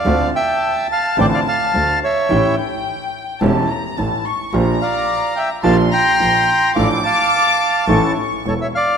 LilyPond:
<<
  \new Staff \with { instrumentName = "Violin section" } { \time 4/4 \key d \minor \tempo 4 = 107 a''1 | g''2 a''8 bes''8 a''8 cis'''8 | bes''2 c'''2 | d'''2 cis'''4. r8 | }
  \new Staff \with { instrumentName = "Bandoneon" } { \time 4/4 \key d \minor << { f''8 g''4 a''8 g''16 f''16 a''4 e''8~ | e''8 r2. r8 | r8 f''4 g''8 a''8 bes''4. | f''8 a''2 r8 cis''16 e''16 f''8 | } \\ { d''8 e''4 f''8 d''16 d''16 f''4 cis''8~ | cis''8 r2. r8 | r8 d''4 e''8 f''8 g''4. | d''8 f''4. r4 a'16 cis''16 d''8 | } >> }
  \new Staff \with { instrumentName = "Grand piano" } { \clef bass \time 4/4 \key d \minor <d, d a c' f'>8 r4. <a,, a, d a c' f'>8 r8 <d, d>8 r8 | <a,, a, e a cis' g'>8 r4. <e,, e, e a cis' g'>8 r8 <a,, a,>8 r8 | <bes,, bes, f bes d' g'>8 r4. <bes,, bes, f bes d' g'>8 r8 <bes,, bes,>8 r8 | <a,, a, f a d' a'>8 r4. <a,, a, e a cis' a'>8 r8 <e,, e,>8 r8 | }
  \new Staff \with { instrumentName = "Double bass" } { \clef bass \time 4/4 \key d \minor d,8 r4. a,,8 r8 d,8 r8 | a,,8 r4. e,,8 r8 a,,8 r8 | bes,,8 r4. bes,,8 r8 bes,,8 r8 | a,,8 r4. a,,8 r8 e,,8 r8 | }
>>